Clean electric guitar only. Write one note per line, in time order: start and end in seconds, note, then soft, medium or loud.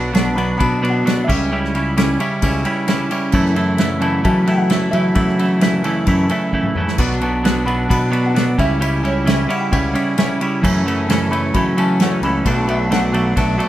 0.00 0.12 B2 medium
0.00 0.12 F#3 medium
0.00 0.13 B3 medium
0.00 0.14 D4 medium
0.13 0.35 B2 medium
0.13 0.36 F#3 medium
0.13 0.37 B3 medium
0.13 0.37 D4 medium
0.37 0.57 B2 medium
0.37 0.58 F#3 loud
0.37 0.58 B3 loud
0.37 0.58 D4 medium
0.58 0.81 B2 medium
0.58 0.82 F#3 medium
0.58 0.82 B3 medium
0.58 0.82 D4 loud
0.82 1.03 B2 medium
0.82 1.04 F#3 loud
0.82 1.05 B3 medium
0.82 1.05 D4 loud
1.04 1.27 B2 medium
1.04 1.27 F#3 medium
1.04 1.27 B3 medium
1.04 1.27 D4 medium
1.28 1.50 C#3 medium
1.28 1.51 G3 medium
1.28 1.52 C#4 loud
1.28 1.52 E4 loud
1.51 1.73 C#3 medium
1.51 1.73 G3 loud
1.51 1.75 C#4 medium
1.51 1.76 E4 loud
1.74 1.96 C#3 medium
1.74 1.96 G3 medium
1.74 1.97 C#4 medium
1.74 1.98 E4 medium
1.97 2.18 C#3 medium
1.97 2.19 G3 medium
1.97 2.20 C#4 medium
1.97 2.20 E4 medium
2.19 2.41 C#3 medium
2.19 2.42 G3 loud
2.19 2.43 C#4 loud
2.19 2.43 E4 loud
2.42 2.63 C#3 medium
2.42 2.64 G3 medium
2.42 2.66 C#4 loud
2.42 2.66 E4 medium
2.65 2.86 C#3 loud
2.65 2.87 G3 loud
2.65 2.88 C#4 medium
2.65 2.89 E4 loud
2.87 3.10 C#3 medium
2.87 3.10 G3 medium
2.87 3.12 C#4 medium
2.87 3.12 E4 medium
3.11 3.32 C#3 medium
3.11 3.33 G3 medium
3.11 3.34 C#4 medium
3.11 3.34 E4 medium
3.33 3.55 F#2 medium
3.33 3.54 C#3 medium
3.33 3.56 E3 medium
3.33 3.56 A3 medium
3.33 3.57 E4 loud
3.55 3.78 F#2 medium
3.55 3.78 C#3 medium
3.55 3.79 E3 medium
3.55 3.80 A3 medium
3.55 3.80 E4 medium
3.78 4.00 F#2 medium
3.78 4.00 C#3 medium
3.78 4.01 E3 medium
3.78 4.02 A3 medium
3.78 4.02 E4 medium
4.00 4.22 F#2 loud
4.00 4.23 C#3 medium
4.00 4.23 E3 medium
4.00 4.24 A3 medium
4.00 4.24 E4 loud
4.23 4.45 F#2 medium
4.23 4.46 C#3 medium
4.23 4.47 E3 medium
4.23 4.47 A3 medium
4.23 4.48 E4 medium
4.46 4.68 F#2 medium
4.46 4.68 C#3 medium
4.46 4.69 E3 loud
4.46 4.69 A3 loud
4.46 4.70 E4 loud
4.69 4.91 F#2 medium
4.69 4.92 C#3 medium
4.69 4.93 E3 medium
4.69 4.93 A3 loud
4.69 4.94 E4 medium
4.92 5.13 F#2 medium
4.92 5.13 C#3 medium
4.92 5.14 E3 medium
4.92 5.14 A3 medium
4.92 5.15 E4 medium
5.15 5.37 F#2 medium
5.15 5.38 C#3 medium
5.15 5.39 E3 medium
5.15 5.39 A3 medium
5.15 5.40 E4 loud
5.38 5.60 F#2 medium
5.38 5.60 C#3 medium
5.38 5.61 E3 medium
5.38 5.61 A3 medium
5.38 5.62 E4 medium
5.61 5.82 F#2 medium
5.61 5.83 C#3 medium
5.61 5.84 E3 medium
5.61 5.84 A3 medium
5.61 5.85 E4 medium
5.83 6.05 F#2 medium
5.83 6.06 C#3 loud
5.83 6.06 E3 medium
5.83 6.07 A3 medium
5.83 6.07 E4 medium
6.06 6.28 F#2 medium
6.06 6.29 C#3 medium
6.06 6.30 E3 medium
6.06 6.30 A3 medium
6.06 6.30 E4 medium
6.29 6.51 F#2 medium
6.29 6.52 C#3 medium
6.29 6.53 E3 medium
6.29 6.53 A3 loud
6.29 6.53 E4 loud
6.52 6.75 F#2 medium
6.52 6.75 C#3 medium
6.52 6.76 E3 medium
6.52 6.76 A3 medium
6.52 6.77 E4 medium
6.76 6.98 F#2 medium
6.76 6.98 C#3 medium
6.76 6.98 E3 medium
6.76 6.98 A3 medium
6.76 6.99 E4 medium
6.98 7.20 B2 medium
6.98 7.21 F#3 medium
6.98 7.22 B3 medium
6.98 7.21 D4 medium
7.21 7.43 B2 medium
7.21 7.43 F#3 medium
7.21 7.44 B3 medium
7.21 7.44 D4 medium
7.44 7.65 B2 medium
7.44 7.66 F#3 medium
7.44 7.66 B3 medium
7.44 7.67 D4 medium
7.66 7.87 B2 medium
7.66 7.88 F#3 medium
7.66 7.89 B3 medium
7.66 7.89 D4 loud
7.89 8.09 B2 medium
7.89 8.10 F#3 medium
7.89 8.10 B3 medium
7.89 8.11 D4 medium
8.11 8.34 B2 medium
8.11 8.34 F#3 medium
8.11 8.35 B3 loud
8.11 8.35 D4 loud
8.35 8.57 B2 medium
8.35 8.57 F#3 medium
8.35 8.57 B3 medium
8.35 8.58 D4 loud
8.58 8.79 C#3 medium
8.58 8.79 G3 medium
8.58 8.81 C#4 medium
8.58 8.81 E4 medium
8.80 9.02 C#3 medium
8.80 9.02 G3 medium
8.80 9.04 C#4 loud
8.80 9.04 E4 loud
9.03 9.24 C#3 medium
9.03 9.25 G3 medium
9.03 9.27 C#4 medium
9.03 9.27 E4 medium
9.25 9.47 C#3 medium
9.25 9.48 G3 medium
9.25 9.50 C#4 medium
9.25 9.50 E4 medium
9.48 9.70 C#3 medium
9.48 9.71 G3 loud
9.48 9.71 C#4 loud
9.48 9.72 E4 loud
9.71 9.93 C#3 medium
9.71 9.94 G3 medium
9.71 9.94 C#4 medium
9.71 9.95 E4 medium
9.94 10.16 C#3 medium
9.94 10.17 G3 medium
9.94 10.17 C#4 loud
9.94 10.18 E4 loud
10.17 10.39 C#3 medium
10.17 10.40 G3 medium
10.17 10.41 C#4 medium
10.17 10.41 E4 medium
10.40 10.62 C#3 medium
10.40 10.63 G3 medium
10.40 10.63 C#4 medium
10.40 10.63 E4 medium
10.62 10.84 F#2 medium
10.62 10.85 C#3 loud
10.62 10.86 E3 medium
10.62 10.87 A3 loud
10.62 10.87 C#4 loud
10.85 11.07 F#2 medium
10.85 11.08 C#3 medium
10.85 11.09 E3 medium
10.85 11.10 A3 medium
10.85 11.09 C#4 medium
11.08 11.29 F#2 medium
11.08 11.30 C#3 medium
11.08 11.31 E3 medium
11.08 11.32 A3 loud
11.08 11.31 C#4 medium
11.30 11.53 F#2 medium
11.30 11.54 C#3 medium
11.30 11.54 E3 loud
11.30 11.55 A3 loud
11.30 11.55 C#4 loud
11.54 11.75 F#2 medium
11.54 11.76 C#3 medium
11.54 11.77 E3 medium
11.54 11.77 A3 loud
11.54 11.77 C#4 loud
11.77 11.99 F#2 loud
11.77 12.00 C#3 loud
11.77 12.00 E3 loud
11.77 12.01 A3 loud
11.77 12.01 C#4 loud
12.00 12.22 F#2 medium
12.00 12.22 C#3 medium
12.00 12.23 E3 medium
12.00 12.23 A3 medium
12.00 12.24 C#4 medium
12.23 12.44 F#2 medium
12.23 12.45 C#3 medium
12.23 12.45 E3 medium
12.23 12.45 A3 medium
12.23 12.46 C#4 medium
12.45 12.66 B2 medium
12.45 12.67 F#3 medium
12.45 12.68 A3 loud
12.45 12.68 D4 loud
12.67 12.89 B2 medium
12.67 12.90 F#3 medium
12.67 12.90 A3 medium
12.67 12.91 D4 medium
12.90 13.11 B2 medium
12.90 13.12 F#3 medium
12.90 13.13 A3 medium
12.90 13.13 D4 medium
13.13 13.35 B2 loud
13.13 13.35 F#3 loud
13.13 13.35 A3 loud
13.13 13.37 D4 loud
13.36 13.56 B2 medium
13.36 13.57 F#3 medium
13.36 13.58 A3 medium
13.36 13.58 D4 loud
13.58 13.69 B2 medium
13.58 13.69 F#3 medium
13.58 13.69 A3 loud
13.58 13.69 D4 loud